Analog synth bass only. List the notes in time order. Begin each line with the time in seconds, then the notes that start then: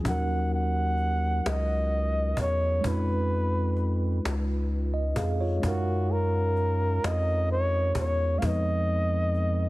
0.06 D#2
1.46 C#2
2.37 E2
2.85 F2
4.25 C#2
5.17 F2
5.64 F#2
7.04 F2
7.96 E2
8.43 F2